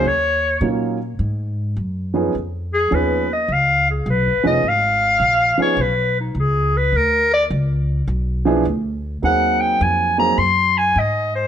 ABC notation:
X:1
M:4/4
L:1/8
Q:"Swing" 1/4=105
K:Db
V:1 name="Clarinet"
d2 z6 | z A _c e f A c e | f3 d _c E A c | B =d z6 |
g =g a b c' a e c |]
V:2 name="Grand piano"
z2 [G,B,DEF] z4 [F,_CDEA] | z2 [F,_CDEA] z4 [F,CDEA] | z3 [F,_CDEA] z4 | z4 z [F,=B,=D_FA] z2 |
[G,B,CEA]3 [G,B,CEA] z4 |]
V:3 name="Upright bass" clef=bass
E,,2 B,,2 A,,2 G,,2 | F,,2 E,,2 D,,2 (3_C,, A,,, F,,, | A,,,2 B,,, z _C,,2 D,,2 | =D,,2 _D,,2 =B,,,2 =D,,2 |
E,,2 F,,2 G,,2 A,,2 |]